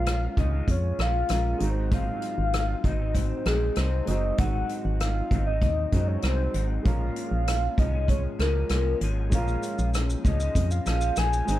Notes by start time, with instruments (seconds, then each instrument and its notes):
Already playing: fm bass A#1, clean electric guitar A#2 G#3 C#4 F4, upright piano G#3 C#4 F4 A#4, soft synth lead F5
0.06 cross-stick, closed hi-hat
0.37 fm bass C#2, clean electric guitar A#2 G#3 C#4 F4, soft synth lead D#5, kick, closed hi-hat
0.52 clean electric guitar G#3 C#4 F4
0.68 fm bass F2, soft synth lead C#5, kick, closed hi-hat
0.99 fm bass A#1, clean electric guitar A#2 G#3 C#4 F4, soft synth lead F5, cross-stick, closed hi-hat
1.29 fm bass A#1, clean electric guitar A#2 G#3 C#4, upright piano G#3 C#4 F4 A#4, cross-stick, closed hi-hat
1.33 clean electric guitar F4
1.58 fm bass G#1, clean electric guitar G#2 F#3, upright piano G#3 D#4 F#4, closed hi-hat
1.63 clean electric guitar C4 D#4, upright piano A#4
1.70 upright piano C5
1.91 clean electric guitar G#2 F#3 C4 D#4, soft synth lead F5, kick, closed hi-hat
2.22 closed hi-hat
2.38 fm bass G#1
2.53 cross-stick, closed hi-hat
2.84 fm bass G#1, clean electric guitar G#2 F#3 C4 D#4, soft synth lead D#5, kick, closed hi-hat
3.00 clean electric guitar F#3 C4 D#4
3.15 soft synth lead C5, kick, closed hi-hat
3.46 fm bass A#1, clean electric guitar G#2 F#3 C4 D#4, soft synth lead G#4, cross-stick, closed hi-hat
3.76 fm bass C2, clean electric guitar G#2 F#3 C4 D#4, soft synth lead C5, cross-stick, closed hi-hat
4.05 fm bass F#1, clean electric guitar G#2 F#3, upright piano G#3 D#4 F#4, soft synth lead D#5, closed hi-hat
4.10 clean electric guitar C4 D#4, upright piano C5
4.38 fm bass G#1, clean electric guitar G#2 F#3 C4 D#4, soft synth lead F#5, kick, closed hi-hat
4.69 closed hi-hat
4.85 fm bass G#1, soft synth lead F#5
5.00 soft synth lead F5, cross-stick, closed hi-hat
5.31 fm bass G#1, clean electric guitar G#2 F#3 C4 D#4, kick, closed hi-hat
5.46 clean electric guitar F#3 C4 D#4, soft synth lead D#5
5.62 fm bass D#2, kick, closed hi-hat
5.92 fm bass F#2, clean electric guitar G#2 F#3 C4 D#4, upright piano G#3 D#4 F#4 C5, kick, closed hi-hat
6.08 soft synth lead C#5
6.22 fm bass C2, clean electric guitar G#2 F#3 C4 D#4, soft synth lead C5, cross-stick, closed hi-hat
6.54 fm bass G#1, clean electric guitar G#2 F#3 C4 D#4, closed hi-hat
6.83 fm bass A#1, clean electric guitar A#2 F3 G#3, upright piano G#3 C#4 F4, soft synth lead F5, kick, closed hi-hat
6.87 clean electric guitar C#4, upright piano A#4
7.16 closed hi-hat
7.31 fm bass A#1
7.47 cross-stick, closed hi-hat
7.77 fm bass C2, clean electric guitar A#2 F3 G#3 C#4, soft synth lead D#5, kick, closed hi-hat
7.93 clean electric guitar F3 G#3 C#4
8.08 soft synth lead C#5, kick, closed hi-hat
8.39 fm bass C#2, clean electric guitar A#2 F3 G#3 C#4, soft synth lead A#4, cross-stick, closed hi-hat
8.69 fm bass C2, clean electric guitar A#2 F3 G#3 C#4, cross-stick, closed hi-hat
9.01 fm bass G#1, clean electric guitar A#2 F3 G#3 C#4, closed hi-hat
9.30 fm bass A#1, clean electric guitar A#2 F3 G#3, upright piano G#3 C#4 F4, soft synth lead F5, kick, closed hi-hat, shaker
9.34 clean electric guitar C#4, upright piano A#4
9.48 shaker
9.63 closed hi-hat, shaker
9.79 fm bass A#1, shaker
9.94 cross-stick, closed hi-hat, shaker
10.10 shaker
10.24 fm bass C#2, clean electric guitar A#2 F3 G#3 C#4, soft synth lead D#5, kick, closed hi-hat, shaker
10.40 clean electric guitar F3 G#3 C#4, shaker
10.55 fm bass F2, kick, closed hi-hat, shaker
10.71 soft synth lead F5, shaker
10.86 fm bass A#1, clean electric guitar A#2 F3 G#3 C#4, soft synth lead F5, cross-stick, closed hi-hat, shaker
11.01 shaker
11.16 fm bass A#1, clean electric guitar A#2 F3 G#3 C#4, soft synth lead G#5, cross-stick, closed hi-hat, shaker
11.33 shaker
11.45 fm bass G#1, clean electric guitar G#2 D#3, upright piano G#3 C4 D#4, closed hi-hat, shaker
11.49 clean electric guitar G#3 C4, upright piano C5